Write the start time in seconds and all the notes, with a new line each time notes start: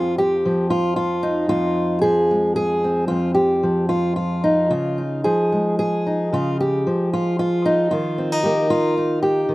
Already playing: F2 F3 C4 F4
0.18 G4
0.45 F3
0.70 F4
0.96 F4
1.23 D#4
1.49 F2 F4
2.02 F3 G#4
2.31 G#3
2.56 G#4
2.84 C4
3.08 F2 F4
3.35 G4
3.63 F3
3.89 F4
4.16 F4
4.44 D#4
4.70 C#3 F4
4.98 D#4
5.24 F3 G#4
5.52 G#3
5.79 G#4
6.07 D#4
6.33 C#3 F4
6.60 G4
6.87 F3
7.13 F4
7.39 F4
7.65 D#4
7.91 D#3 F4
8.18 C4
8.32 D#4
8.43 A#3 G4
8.70 F4
8.97 D#4
9.23 G4
9.49 D#3